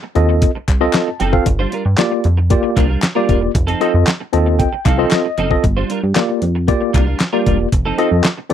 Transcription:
0.03 muted clean electric guitar stroke
0.15 analog synth bass D#2, tine electric piano C4 F4 A4 D#5, closed hi-hat
0.29 muted clean electric guitar stroke
0.42 muted clean electric guitar stroke, kick, closed hi-hat
0.55 muted clean electric guitar stroke
0.68 analog synth bass C2, kick, clap, closed hi-hat
0.81 tine electric piano C4 F4 A4 D#5, muted clean electric guitar stroke
0.93 tine electric piano A5, snare, clap, closed hi-hat
1.07 muted clean electric guitar stroke
1.20 analog synth bass F#1, clean electric guitar F3 C4 D#4 A4, tine electric piano G5, closed hi-hat
1.32 tine electric piano C4 F4 A4 F5, muted clean electric guitar stroke, kick
1.46 analog synth bass G1, muted clean electric guitar stroke, kick, closed hi-hat
1.59 clean electric guitar G3 D4 F4 C5
1.72 clean electric guitar G3 D4 F4 A#4, closed hi-hat
1.85 analog synth bass G2, muted clean electric guitar stroke
1.98 tine electric piano A#3 F4 G4 D5, muted clean electric guitar stroke, snare, clap, closed hi-hat
2.11 muted clean electric guitar stroke
2.24 analog synth bass F2, closed hi-hat
2.37 muted clean electric guitar stroke
2.50 tine electric piano A#3 F4 G4 D5, muted clean electric guitar stroke, kick, closed hi-hat
2.63 muted clean electric guitar stroke
2.76 analog synth bass C2, clean electric guitar G3 D4 F4 A#4, kick, clap, closed hi-hat
2.89 clean electric guitar G3 D4 F4 A#4
3.02 muted clean electric guitar stroke, snare, clap, closed hi-hat
3.15 clean electric guitar G3 D4 F4 A#4, tine electric piano A#3 F4 G4 D5
3.28 analog synth bass E1, clean electric guitar G3 D4 F4 A#4, kick, closed hi-hat
3.41 muted clean electric guitar stroke
3.54 analog synth bass F1, muted clean electric guitar stroke, kick, closed hi-hat
3.67 clean electric guitar F3 C4 D#4 A4, closed hi-hat
3.81 clean electric guitar F3 C4 D#4 A4, tine electric piano C4 F4 A4 D#5, closed hi-hat
3.94 analog synth bass F2
4.07 muted clean electric guitar stroke, snare, clap, closed hi-hat
4.20 muted clean electric guitar stroke
4.33 analog synth bass D#2, tine electric piano C4 F4 A4 D#5 A5, closed hi-hat
4.46 muted clean electric guitar stroke
4.59 tine electric piano G5, muted clean electric guitar stroke, kick, closed hi-hat
4.73 muted clean electric guitar stroke
4.85 analog synth bass C2, clean electric guitar F3 C4 D#4 A4, tine electric piano F5, kick, clap, closed hi-hat
4.98 clean electric guitar F3 C4 D#4 A4, tine electric piano C4 F4 A4 D#5
5.11 tine electric piano D#5, snare, clap, closed hi-hat
5.25 muted clean electric guitar stroke
5.38 analog synth bass F#1, clean electric guitar F3 C4 D#4 A4, tine electric piano D#5, closed hi-hat
5.50 tine electric piano C4 F4 A4 D#5, muted clean electric guitar stroke, kick
5.63 analog synth bass G1, muted clean electric guitar stroke, kick, closed hi-hat
5.77 clean electric guitar G3 D4 F4 C5
5.89 clean electric guitar G3 D4 F4 A#4, closed hi-hat
6.03 analog synth bass G2, muted clean electric guitar stroke
6.16 tine electric piano A#3 F4 G4 D5, muted clean electric guitar stroke, snare, clap, closed hi-hat
6.29 muted clean electric guitar stroke
6.42 analog synth bass F2, closed hi-hat
6.55 muted clean electric guitar stroke
6.68 tine electric piano A#3 F4 G4 D5, muted clean electric guitar stroke, kick, closed hi-hat
6.81 muted clean electric guitar stroke
6.93 analog synth bass C2, clean electric guitar G3 D4 F4 A#4, kick, clap, closed hi-hat
7.06 clean electric guitar G3 D4 F4 A#4
7.19 muted clean electric guitar stroke, snare, clap, closed hi-hat
7.33 clean electric guitar G3 D4 F4 A#4, tine electric piano A#3 F4 G4 D5
7.46 analog synth bass E1, clean electric guitar G3 D4 F4 A#4, kick, closed hi-hat
7.59 muted clean electric guitar stroke
7.72 analog synth bass F1, muted clean electric guitar stroke, kick, closed hi-hat
7.85 clean electric guitar F3 C4 D#4 A4
7.98 clean electric guitar F3 C4 D#4 A4, tine electric piano C4 F4 A4 D#5, closed hi-hat
8.12 analog synth bass F2
8.24 muted clean electric guitar stroke, snare, clap, closed hi-hat
8.38 muted clean electric guitar stroke
8.50 tine electric piano C4 F4 A4, closed hi-hat

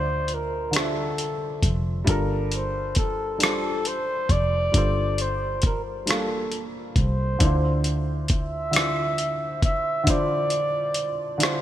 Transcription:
Already playing: fingered electric bass D2, grand piano D3 D4 F4 C5 D#5 E5 F5, flugelhorn C5
0.28 closed hi-hat
0.34 flugelhorn A#4
0.71 grand piano D3 D4 F4, closed hi-hat
0.76 flugelhorn A4, grand piano C5 E5, cross-stick
1.18 fingered electric bass C2, closed hi-hat
1.63 fingered electric bass F1, kick, closed hi-hat
2.04 fingered electric bass G1, grand piano G3 D4 F4, kick, closed hi-hat
2.09 grand piano A4 A#4
2.52 closed hi-hat
2.56 flugelhorn C5
2.95 flugelhorn A4, kick, closed hi-hat
3.38 grand piano G3 D4 F4, closed hi-hat
3.42 grand piano A4 C5, flugelhorn A4, cross-stick
3.85 flugelhorn C5, closed hi-hat
4.29 fingered electric bass F1, flugelhorn D5, kick, closed hi-hat
4.72 fingered electric bass G1, grand piano G3 D4 F4, kick, closed hi-hat
4.76 grand piano A4 C5
5.18 flugelhorn C5, closed hi-hat
5.62 kick, closed hi-hat
5.66 flugelhorn A#4
6.05 grand piano G3 D4 F4 A4, closed hi-hat
6.10 grand piano A#3, flugelhorn A4, cross-stick
6.52 fingered electric bass F1, closed hi-hat
6.96 fingered electric bass C2, flugelhorn C5, kick, closed hi-hat
7.39 fingered electric bass D2, grand piano D3 D4 E4, kick, closed hi-hat
7.43 grand piano F4 C5
7.84 closed hi-hat
8.28 flugelhorn E5, kick, closed hi-hat
8.71 grand piano D3 D4 E4, closed hi-hat
8.75 grand piano F4 C5, cross-stick
9.18 closed hi-hat
9.62 fingered electric bass C2, flugelhorn E5, kick, closed hi-hat
10.03 grand piano D3 D4 E4, kick, closed hi-hat
10.08 grand piano F4 C5, flugelhorn D5
10.50 closed hi-hat
10.94 closed hi-hat
11.38 grand piano D3 D4 E4 F4, closed hi-hat
11.43 grand piano C5, cross-stick

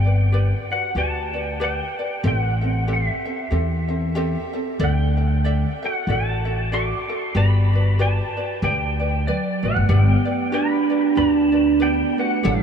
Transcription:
Already playing: upright bass G1, pedal steel guitar G5
0.04 ukulele B4 D5
0.32 ukulele G4 B4 D5
0.71 ukulele F#4 B4 D5, pedal steel guitar F#5
0.95 upright bass D2, ukulele F#4 G4 B4 D5, pedal steel guitar A5
1.34 ukulele F#4 B4 D5
1.48 pedal steel guitar G5
1.60 ukulele G4 B4 D5, pedal steel guitar G5
1.99 ukulele B4 D5
2.23 upright bass A1, ukulele C4 G4 A4 E5
2.27 pedal steel guitar G5
2.38 pedal steel guitar F#5
2.61 ukulele C4 A4 E5
2.88 ukulele C4 G4 A4 E5
2.93 pedal steel guitar E5
3.25 ukulele C4 A4 E5
3.51 upright bass E2, ukulele C4 G4 A4 E5
3.88 ukulele C4 A4 E5
4.15 ukulele C4 G4 A4 E5
4.53 ukulele C4 A4 E5
4.79 upright bass D2, ukulele A4 D5 E5
4.84 pedal steel guitar G5
5.17 ukulele A4 E5
5.44 ukulele A4 D5 E5
5.83 ukulele F#4 A4 E5, pedal steel guitar F#5
6.07 upright bass A1, ukulele F#4 A4 D5 E5
6.11 pedal steel guitar A5
6.45 ukulele F#4 A4 E5
6.72 ukulele F#4 A4 D5 E5, pedal steel guitar D6
7.09 ukulele F#4 A4 E5
7.23 pedal steel guitar C6
7.35 upright bass G1, ukulele F#4 G4 B4 D5, pedal steel guitar B5
7.73 ukulele F#4 B4 D5
7.99 ukulele F#4 G4 B4 D5, pedal steel guitar A5
8.37 ukulele F#4 B4 D5
8.62 upright bass D2, ukulele G4 B4 D5, pedal steel guitar G5
9.00 ukulele B4 D5
9.27 vibraphone F#3, ukulele B4 D5, pedal steel guitar D5
9.63 upright bass A1, vibraphone A3, ukulele F#4 B4 D5, pedal steel guitar F#5
9.76 upright bass G1
9.87 upright bass G1, vibraphone B3, ukulele G4 B4 D5, pedal steel guitar F#5
10.00 pedal steel guitar G5
10.25 ukulele B4 D5
10.51 vibraphone D4, ukulele F#4 G4 B4 D5, pedal steel guitar B5
10.90 ukulele F#4 B4 D5
11.13 upright bass D2, vibraphone D4, ukulele F#4 G4 B4 D5
11.17 pedal steel guitar A5
11.52 ukulele F#4 B4 D5
11.78 vibraphone B3, ukulele G4 B4 D5
11.82 pedal steel guitar G5
12.16 vibraphone A3, ukulele F#4 B4 D5, pedal steel guitar F#5
12.43 upright bass A1, vibraphone G3, ukulele E4 G4 A4 C#5, pedal steel guitar E5

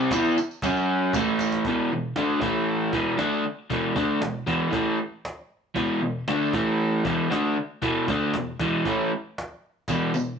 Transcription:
Already playing: overdriven electric guitar C3 G3 C4
0.11 overdriven electric guitar E3 B3 E4, cajon bass, cajon slap, tambourine
0.25 tambourine
0.38 muted overdriven electric guitar stroke, tambourine
0.51 tambourine
0.62 overdriven electric guitar F#3 C#4 F#4, cajon bass, tambourine
0.76 tambourine
1.13 overdriven electric guitar A2 E3 A3, cajon bass, cajon slap, tambourine
1.39 cajon slap, tambourine
1.52 cajon slap
1.65 overdriven electric guitar E2 B2 E3, cajon bass
1.93 overdriven electric guitar E2 B2
2.16 overdriven electric guitar D3 A3 D4, cajon slap
2.41 overdriven electric guitar A2 E3 A3, cajon bass
2.93 overdriven electric guitar E2 B2 E3, cajon bass
3.17 overdriven electric guitar D3 A3 D4, cajon slap
3.46 muted overdriven electric guitar stroke
3.70 overdriven electric guitar E2 B2 E3, cajon bass
3.95 overdriven electric guitar D3 A3 D4, cajon bass
4.21 overdriven electric guitar E2 B2, cajon slap
4.47 overdriven electric guitar E2 B2 E3, cajon bass
4.71 overdriven electric guitar A2 E3 A3, cajon bass
5.25 cajon slap
5.75 overdriven electric guitar E2 B2 E3, cajon bass
6.02 overdriven electric guitar E2 B2
6.28 overdriven electric guitar D3 A3 D4, cajon slap
6.53 overdriven electric guitar A2 E3 A3, cajon bass
7.04 overdriven electric guitar E2 B2 E3, cajon bass
7.30 overdriven electric guitar D3 A3 D4, cajon slap
7.57 muted overdriven electric guitar stroke
7.82 overdriven electric guitar E2 B2 E3, cajon bass
8.08 overdriven electric guitar D3 A3 D4, cajon bass
8.34 overdriven electric guitar E2 B2, cajon slap
8.60 overdriven electric guitar E2 B2 E3, cajon bass
8.85 overdriven electric guitar A2 E3 A3, cajon bass
9.38 cajon slap
9.88 overdriven electric guitar E2 B2 E3, cajon bass, tambourine
10.14 overdriven electric guitar E2 B2, tambourine

